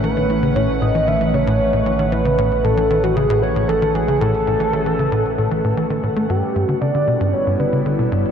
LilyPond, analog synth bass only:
\new Staff \with { instrumentName = "Analog synth bass" } { \clef bass \time 4/4 \key a \lydian \tempo 4 = 115 e16 dis16 e16 cis16 a,16 r16 a,16 e16 dis16 e16 cis16 a,16 r16 a,16 e16 dis16 | e16 cis16 a,16 r16 a,16 e16 dis16 e16 cis16 a,16 r16 a,16 e16 dis16 e16 cis16 | a,16 r16 a,16 e16 dis16 e16 cis16 a,16 r16 a,16 e16 a,16 e16 dis16 a,16 a16 | \key g \lydian g,16 r16 g,16 d16 cis16 d16 b,16 g,16 r16 g,16 d16 cis16 d16 b,16 g,16 r16 | }